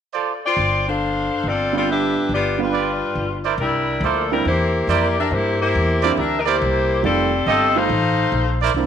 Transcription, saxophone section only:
0.45 0.84 F4 medium
0.45 0.84 C5 medium
0.45 0.84 D5 medium
0.45 0.84 G5 medium
0.88 1.45 D4 medium
0.88 1.45 A4 medium
0.88 1.45 C5 medium
0.88 1.45 F5 medium
1.47 1.75 C4 medium
1.47 1.74 F4 medium
1.47 1.74 A4 medium
1.47 1.74 D5 medium
1.77 1.88 C4 medium
1.77 1.88 F4 medium
1.77 1.88 A4 medium
1.77 1.88 D5 medium
1.90 2.29 D4 medium
1.90 2.29 G4 medium
1.90 2.29 B4 medium
1.90 2.29 E5 medium
2.33 2.58 B3 medium
2.33 2.58 F4 medium
2.33 2.58 G4 medium
2.33 2.58 D5 medium
2.62 3.43 G3 medium
2.62 3.43 D4 medium
2.62 3.43 F4 medium
2.62 3.43 B4 medium
3.60 4.00 G3 medium
3.60 4.00 D4 medium
3.60 4.00 E4 medium
3.60 4.00 A#4 medium
4.03 4.31 F3 medium
4.03 4.31 A#3 medium
4.03 4.30 D4 medium
4.03 4.31 A4 medium
4.31 4.45 G3 medium
4.31 4.45 D4 medium
4.31 4.45 E4 medium
4.31 4.45 A#4 medium
4.47 4.86 A#3 medium
4.47 4.87 E4 medium
4.47 4.87 G4 medium
4.47 4.87 C5 medium
4.89 5.18 A#3 medium
4.89 5.18 E4 medium
4.89 5.17 G4 medium
4.89 5.18 D5 medium
5.19 5.32 D4 medium
5.19 5.31 G4 medium
5.19 5.32 A#4 medium
5.19 5.32 E5 medium
5.32 5.60 A#3 medium
5.32 5.60 E4 medium
5.32 5.60 G4 medium
5.32 5.60 C5 medium
5.61 6.14 A#3 medium
5.61 6.14 E4 medium
5.61 6.14 G4 medium
5.61 6.14 C5 medium
6.18 6.37 D4 medium
6.18 6.37 G4 medium
6.18 6.37 A#4 medium
6.18 6.37 E5 medium
6.39 6.47 A#4 medium
6.46 7.04 A#3 medium
6.46 7.04 E4 medium
6.46 7.03 G4 medium
6.46 7.04 C5 medium
7.04 7.44 C4 medium
7.04 7.44 G4 medium
7.04 7.44 A4 medium
7.04 7.44 D5 medium
7.48 7.76 C4 medium
7.48 7.76 G4 medium
7.48 7.76 A4 medium
7.48 7.77 D#5 loud
7.77 8.62 D#4 medium
7.77 8.62 A4 medium
7.77 8.62 C5 medium
7.77 8.62 F5 loud

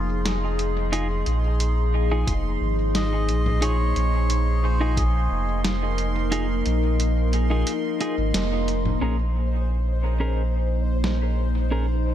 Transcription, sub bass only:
0.00 1.24 F1 loud
1.27 2.25 A#1 medium
2.28 2.57 F1 medium
2.61 3.30 G#1 medium
3.29 3.93 A#1 medium
3.96 5.28 A#1 medium
5.31 6.63 F1 loud
6.66 7.64 A#1 loud
8.18 8.32 G#1 medium
8.34 8.99 F1 loud
9.02 12.14 A#1 medium

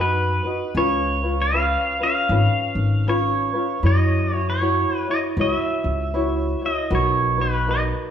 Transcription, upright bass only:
0.00 0.38 F#2 medium
0.75 1.75 C#2 medium
2.29 2.45 G#1 medium
2.75 3.45 G#1 medium
3.83 4.83 F#2 medium
5.37 5.52 C#2 medium
5.84 6.54 C#2 medium
6.91 7.91 B1 medium

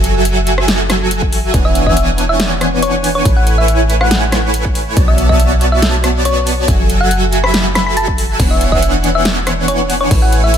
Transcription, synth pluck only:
1.65 1.78 E5 medium
1.87 1.99 E5 medium
2.29 2.42 E5 medium
2.82 2.96 C#5 medium
3.15 3.28 C#5 medium
3.37 3.49 F#5 medium
3.58 3.71 E5 medium
4.01 4.44 F#5 medium
5.08 5.21 E5 medium
5.29 5.42 E5 medium
5.72 5.85 E5 medium
6.25 6.39 C#5 medium
7.01 7.13 F#5 medium
7.44 7.56 B5 medium
7.75 7.82 B5 medium
7.86 7.93 B5 medium
7.97 8.44 A5 medium
8.51 8.63 E5 medium
8.72 8.85 E5 medium
9.15 9.28 E5 loud
9.68 9.81 C#5 medium
10.01 10.13 C#5 medium
10.22 10.35 F#5 medium
10.44 10.56 E5 medium

